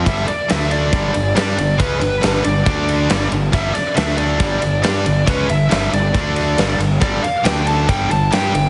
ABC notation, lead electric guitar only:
X:1
M:4/4
L:1/8
Q:1/4=138
K:Ddor
V:1 name="Lead electric guitar"
e d e d3 d2 | B B2 d4 z | e d e d3 d2 | B e2 d4 z |
d f g a g a g2 |]